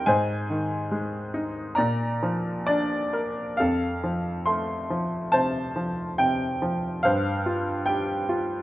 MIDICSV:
0, 0, Header, 1, 2, 480
1, 0, Start_track
1, 0, Tempo, 855920
1, 34, Time_signature, 4, 2, 24, 8
1, 995, Tempo, 907716
1, 1955, Tempo, 872093
1, 2915, Tempo, 846262
1, 4781, End_track
2, 0, Start_track
2, 0, Title_t, "Grand piano"
2, 0, Program_c, 0, 0
2, 0, Control_c, 0, 64, 127
2, 35, Note_on_c, 0, 80, 78
2, 37, Note_on_c, 0, 44, 60
2, 41, Control_c, 0, 64, 0
2, 46, Note_on_c, 0, 72, 61
2, 145, Control_c, 0, 64, 127
2, 280, Note_on_c, 0, 51, 42
2, 513, Note_on_c, 0, 56, 41
2, 751, Note_on_c, 0, 63, 47
2, 973, Note_off_c, 0, 44, 0
2, 977, Note_off_c, 0, 51, 0
2, 978, Note_off_c, 0, 72, 0
2, 982, Note_off_c, 0, 56, 0
2, 982, Note_on_c, 0, 82, 65
2, 989, Note_off_c, 0, 63, 0
2, 989, Note_on_c, 0, 74, 47
2, 1000, Note_on_c, 0, 46, 50
2, 1002, Control_c, 0, 64, 0
2, 1022, Note_off_c, 0, 80, 0
2, 1087, Control_c, 0, 64, 127
2, 1234, Note_on_c, 0, 53, 46
2, 1458, Note_off_c, 0, 74, 0
2, 1466, Note_on_c, 0, 74, 74
2, 1477, Note_on_c, 0, 62, 44
2, 1692, Note_off_c, 0, 82, 0
2, 1713, Note_on_c, 0, 70, 44
2, 1934, Note_off_c, 0, 53, 0
2, 1936, Note_off_c, 0, 46, 0
2, 1941, Note_off_c, 0, 62, 0
2, 1945, Note_off_c, 0, 70, 0
2, 1945, Note_on_c, 0, 77, 67
2, 1960, Note_on_c, 0, 69, 49
2, 1961, Note_on_c, 0, 41, 51
2, 1962, Control_c, 0, 64, 0
2, 1965, Note_off_c, 0, 74, 0
2, 2064, Control_c, 0, 64, 127
2, 2200, Note_on_c, 0, 53, 40
2, 2432, Note_on_c, 0, 84, 73
2, 2438, Note_on_c, 0, 57, 41
2, 2447, Note_off_c, 0, 77, 0
2, 2669, Note_off_c, 0, 53, 0
2, 2678, Note_on_c, 0, 53, 44
2, 2896, Note_off_c, 0, 69, 0
2, 2907, Note_on_c, 0, 81, 74
2, 2914, Note_on_c, 0, 48, 39
2, 2914, Note_on_c, 0, 72, 51
2, 2927, Note_off_c, 0, 84, 0
2, 3147, Note_off_c, 0, 53, 0
2, 3155, Note_on_c, 0, 53, 42
2, 3378, Note_off_c, 0, 57, 0
2, 3392, Note_off_c, 0, 48, 0
2, 3397, Note_on_c, 0, 79, 75
2, 3401, Note_on_c, 0, 48, 43
2, 3411, Note_off_c, 0, 81, 0
2, 3636, Note_off_c, 0, 53, 0
2, 3644, Note_on_c, 0, 53, 42
2, 3860, Note_off_c, 0, 72, 0
2, 3864, Note_off_c, 0, 41, 0
2, 3869, Note_off_c, 0, 48, 0
2, 3876, Note_on_c, 0, 77, 76
2, 3877, Note_off_c, 0, 53, 0
2, 3886, Note_on_c, 0, 43, 57
2, 3888, Note_on_c, 0, 72, 53
2, 3891, Control_c, 0, 64, 0
2, 3896, Note_off_c, 0, 79, 0
2, 3975, Control_c, 0, 64, 127
2, 4121, Note_on_c, 0, 65, 42
2, 4346, Note_on_c, 0, 79, 72
2, 4357, Note_on_c, 0, 67, 40
2, 4369, Note_off_c, 0, 77, 0
2, 4584, Note_off_c, 0, 65, 0
2, 4592, Note_on_c, 0, 65, 43
2, 4781, Note_off_c, 0, 43, 0
2, 4781, Note_off_c, 0, 65, 0
2, 4781, Note_off_c, 0, 67, 0
2, 4781, Note_off_c, 0, 72, 0
2, 4781, Note_off_c, 0, 79, 0
2, 4781, End_track
0, 0, End_of_file